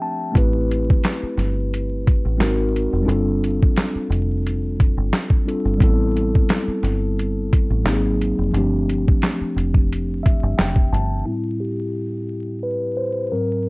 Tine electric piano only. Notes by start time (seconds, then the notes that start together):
Already playing: F3 A3 C4 D4 G4 E5 G5
0.02 A5
0.32 A3 C4 E4
0.36 G4 B4
2.37 G#3 C4 D#4 F#4 A#4
3.01 G3 C4 D4
3.06 F4 A4
5.45 G3 C4 D4 F4 A4
5.77 G3 B3 C4
5.82 E4 A4
7.84 F#3 A#3 C4 D#4 G4
7.93 G#4
8.52 F3 A3 C4
8.56 D4 G4
10.23 E5
10.58 G5
10.93 A5
11.26 A2 G3 C4 E4
11.60 G4
12.63 B4
12.97 C5
13.31 G#2 F#3 C4 A#4